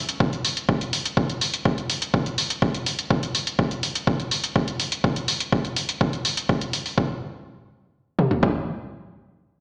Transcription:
0.09 closed hi-hat medium
0.20 kick loud
0.33 closed hi-hat soft
0.45 open hi-hat loud
0.57 closed hi-hat medium
0.69 kick loud
0.81 closed hi-hat soft
0.93 open hi-hat loud
1.05 closed hi-hat medium
1.17 kick loud
1.30 closed hi-hat medium
1.41 open hi-hat loud
1.54 closed hi-hat medium
1.65 kick medium
1.78 closed hi-hat soft
1.90 open hi-hat loud
2.02 closed hi-hat medium
2.14 kick loud
2.26 closed hi-hat soft
2.38 open hi-hat loud
2.50 closed hi-hat medium
2.62 kick loud
2.74 closed hi-hat medium
2.86 open hi-hat loud
2.99 closed hi-hat medium
3.10 kick loud
3.23 closed hi-hat medium
3.35 open hi-hat loud
3.47 closed hi-hat medium
3.59 kick loud
3.71 closed hi-hat soft
3.83 open hi-hat loud
3.95 closed hi-hat medium
4.07 kick loud
4.20 closed hi-hat soft
4.31 open hi-hat medium
4.44 closed hi-hat medium
4.56 kick loud
4.68 closed hi-hat medium
4.80 open hi-hat loud
4.92 closed hi-hat medium
5.04 kick loud
5.16 closed hi-hat medium
5.28 open hi-hat loud
5.40 closed hi-hat medium
5.52 kick loud
5.65 closed hi-hat soft
5.76 open hi-hat loud
5.89 closed hi-hat medium
6.01 kick loud
6.13 closed hi-hat soft
6.25 open hi-hat loud
6.37 closed hi-hat medium
6.49 kick loud
6.61 closed hi-hat medium
6.73 open hi-hat loud
6.86 open hi-hat medium
6.98 kick loud
8.19 mid tom medium
8.31 floor tom medium
8.43 kick medium

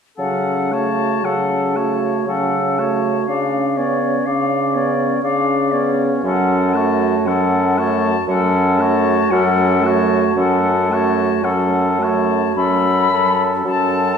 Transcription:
0.17 1.12 C#3 soft
0.17 0.74 F#3 soft
0.17 0.74 C#4 soft
0.17 0.73 A4 soft
0.17 0.75 F#5 soft
0.72 1.25 A3 soft
0.72 1.26 F#4 soft
0.72 1.26 C#5 soft
0.72 1.26 A5 soft
1.24 2.14 C#3 soft
1.24 1.77 F#3 soft
1.24 1.77 C#4 soft
1.24 1.78 A4 soft
1.24 1.77 F#5 soft
1.75 2.27 A3 soft
1.75 2.26 F#4 soft
1.75 2.27 C#5 soft
1.75 2.27 A5 soft
2.26 3.16 C#3 soft
2.26 2.80 F#3 soft
2.26 2.80 C#4 soft
2.26 2.81 A4 soft
2.26 2.80 F#5 soft
2.78 3.29 A3 soft
2.78 3.28 F#4 soft
2.78 3.28 C#5 soft
2.78 3.26 A5 soft
3.26 4.16 C#3 soft
3.26 3.79 C#4 soft
3.26 3.80 D4 soft
3.26 3.79 D5 soft
3.26 3.79 F5 soft
3.77 4.29 B3 soft
3.77 4.28 C#4 soft
3.77 4.29 C#5 soft
3.77 4.27 D5 soft
4.25 5.12 C#3 soft
4.25 4.76 C#4 soft
4.25 4.76 D4 soft
4.25 4.76 D5 soft
4.25 4.76 F5 soft
4.74 5.23 B3 soft
4.74 5.23 C#4 soft
4.74 5.23 C#5 soft
4.74 5.22 D5 soft
5.23 6.12 C#3 soft
5.23 5.74 C#4 soft
5.23 5.75 D4 soft
5.23 5.75 D5 soft
5.23 5.73 F5 soft
5.71 6.23 B3 soft
5.71 6.23 C#4 soft
5.71 6.24 C#5 soft
5.71 6.03 D5 soft
6.24 7.14 F#2 soft
6.24 6.76 F#3 soft
6.24 6.78 C#4 soft
6.24 6.77 A4 soft
6.24 6.75 F#5 soft
6.73 7.28 A3 soft
6.73 7.29 F#4 soft
6.73 7.29 C#5 soft
6.73 7.28 A5 soft
7.26 8.16 F#2 medium
7.26 7.80 F#3 soft
7.26 7.80 C#4 soft
7.26 7.80 A4 soft
7.26 7.79 F#5 soft
7.78 8.14 A3 soft
7.78 8.15 F#4 soft
7.78 8.14 C#5 soft
7.78 8.28 A5 soft
8.28 9.18 F#2 medium
8.28 8.81 F#3 soft
8.28 8.82 C#4 soft
8.28 8.82 A4 soft
8.28 8.79 F#5 soft
8.77 9.32 A3 soft
8.77 9.33 F#4 soft
8.77 9.34 C#5 soft
8.77 9.32 A5 soft
9.30 10.25 F#2 medium
9.30 9.84 F#3 soft
9.30 9.86 C#4 soft
9.30 9.88 A4 soft
9.30 9.85 F#5 soft
9.83 10.35 A3 soft
9.83 10.36 F#4 soft
9.83 10.37 A5 soft
9.87 10.37 C#5 soft
10.36 11.31 F#2 soft
10.36 10.91 F#3 soft
10.36 10.92 C#4 soft
10.36 10.95 A4 soft
10.36 10.93 F#5 soft
10.89 11.44 A3 soft
10.89 11.45 F#4 soft
10.89 11.46 C#5 soft
10.89 11.46 A5 soft
11.43 12.44 F#2 soft
11.43 12.01 F#3 soft
11.43 12.01 C#4 soft
11.43 12.05 A4 soft
11.43 12.03 F#5 soft
11.99 12.55 A3 soft
11.99 12.56 F#4 soft
11.99 12.55 A5 soft
12.03 12.57 C#5 soft
12.56 13.53 F#2 soft
12.56 13.11 F#3 soft
12.56 13.10 C#4 soft
12.56 13.11 A4 soft
12.56 13.43 B5 medium
13.11 13.65 F#3 soft
13.11 13.64 C#4 soft
13.11 13.65 A4 soft
13.65 14.18 F#2 soft
13.65 14.17 F#3 soft
13.65 14.17 C#4 soft
13.65 14.16 A4 soft
13.65 14.18 A5 medium

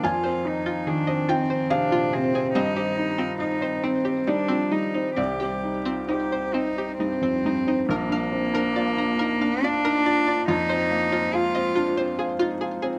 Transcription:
0.00 2.51 F2 medium
0.00 2.56 F3 medium
0.00 0.16 F4 medium
0.04 5.19 D#3 medium
0.04 0.48 F4 medium
0.04 5.16 C5 medium
0.04 1.26 G#5 medium
0.24 0.58 C4 medium
0.24 0.36 C5 medium
0.45 0.79 D#4 medium
0.45 0.90 D#4 medium
0.66 0.87 F4 medium
0.66 0.79 F4 medium
0.86 1.20 D#3 medium
0.86 1.31 D4 medium
0.86 1.00 G#4 medium
1.07 1.42 C4 medium
1.07 1.20 D#5 medium
1.29 1.72 C4 medium
1.29 1.63 D#4 medium
1.29 1.41 F4 medium
1.29 1.68 G5 medium
1.49 1.83 C4 medium
1.49 1.63 C5 medium
1.70 2.05 C3 medium
1.70 2.16 D4 medium
1.70 1.83 G#4 medium
1.70 2.51 F5 loud
1.91 2.13 A#2 medium
1.91 2.05 F4 medium
2.13 2.47 C3 medium
2.13 2.54 C4 medium
2.13 2.26 G#4 medium
2.34 2.55 C4 medium
2.34 2.48 G#4 medium
2.54 5.14 G2 medium
2.54 7.90 G3 medium
2.54 2.68 C4 loud
2.54 3.38 D#4 medium
2.54 4.24 D#5 loud
2.76 3.10 C4 medium
2.76 2.89 G4 medium
2.97 3.32 D#4 medium
3.18 3.31 C4 medium
3.18 3.40 F4 medium
3.39 3.75 D#4 medium
3.39 3.86 D#4 medium
3.39 3.53 D#4 medium
3.61 3.97 C4 medium
3.61 3.75 C5 medium
3.83 3.97 C4 medium
3.83 4.30 C4 medium
3.83 4.19 D#4 medium
4.05 4.41 C4 medium
4.05 4.18 G4 medium
4.27 4.64 G3 medium
4.27 4.74 D4 medium
4.27 4.41 D#4 medium
4.27 5.14 D5 medium
4.48 4.73 F3 soft
4.48 4.62 C4 loud
4.71 5.08 G3 soft
4.71 4.85 D#4 medium
4.71 5.16 D#4 medium
4.94 5.18 C4 soft
4.94 5.08 D#4 medium
5.16 7.86 C2 medium
5.16 5.31 C4 medium
5.16 7.86 D#4 medium
5.16 5.98 G4 medium
5.16 7.86 C5 medium
5.16 6.05 D5 medium
5.40 5.77 C4 soft
5.40 5.54 G4 medium
5.64 6.00 D#4 soft
5.85 6.00 C4 medium
5.85 6.09 F4 soft
6.07 6.45 D#4 soft
6.07 6.23 D#4 medium
6.07 6.56 G4 medium
6.07 7.42 C5 soft
6.31 6.68 C4 soft
6.31 6.46 C5 medium
6.54 6.68 C4 medium
6.54 6.91 D#4 soft
6.54 6.98 D#4 medium
6.76 7.13 C4 soft
6.76 6.92 G4 medium
6.99 7.36 G2 soft
6.99 7.85 C4 medium
6.99 7.14 D#4 medium
7.21 7.45 F2 soft
7.21 7.36 C4 medium
7.45 7.81 G2 soft
7.45 7.59 D#4 medium
7.66 7.89 C4 soft
7.66 7.81 D#4 medium
7.89 10.45 A#1 medium
7.89 10.45 A#3 medium
7.89 9.66 A#3 loud
7.89 12.99 F4 medium
7.89 8.03 A#4 loud
7.89 10.46 D5 medium
8.09 8.46 D4 medium
8.09 8.25 F5 medium
8.32 8.55 C4 medium
8.54 8.89 D4 medium
8.54 8.68 A#4 loud
8.76 9.11 F4 medium
8.76 8.89 D5 medium
8.97 9.33 D4 medium
8.97 9.12 A#5 medium
9.19 9.42 D#4 medium
9.19 9.33 A#4 loud
9.41 9.76 D4 medium
9.41 9.55 F5 medium
9.63 10.49 D4 loud
9.63 9.98 F4 medium
9.63 9.77 D5 medium
9.85 10.07 D#4 soft
9.85 9.98 A#4 loud
10.05 10.40 F4 medium
10.05 10.19 D5 medium
10.27 10.49 D4 medium
10.27 10.40 D5 medium
10.48 12.99 F2 medium
10.48 12.99 G#3 medium
10.48 11.36 D#4 loud
10.48 10.61 F4 medium
10.48 12.99 C5 medium
10.69 11.05 C4 medium
10.69 10.83 C5 medium
10.91 11.13 A#3 medium
11.12 11.47 C4 medium
11.12 11.25 F4 medium
11.33 11.68 F4 medium
11.33 12.19 F4 loud
11.33 11.46 G#4 medium
11.55 11.90 C4 medium
11.55 11.68 D#5 medium
11.76 11.98 D4 medium
11.76 11.89 F4 loud
11.97 12.32 C4 medium
11.97 12.10 C5 medium
12.19 12.53 F4 medium
12.19 12.32 G#4 medium
12.39 12.62 D#4 medium
12.39 12.53 F4 loud
12.61 12.96 F4 medium
12.61 12.74 G#4 medium
12.82 12.99 C4 medium
12.82 12.95 G#4 medium

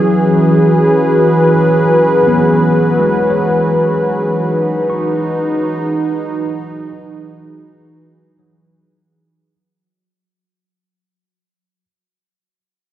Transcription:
0.00 9.52 E3 medium
0.00 2.21 F#3 medium
0.00 9.63 F#3 medium
0.00 6.03 C#4 medium
0.00 9.62 F#4 medium
0.00 9.54 G#4 medium
0.00 9.52 B4 medium
0.00 1.53 E5 medium
2.27 3.19 B3 medium
3.00 6.44 G#3 medium
3.30 6.76 C#5 medium
4.11 9.52 D#4 medium
4.90 8.34 C#6 medium
8.39 11.84 F#3 medium

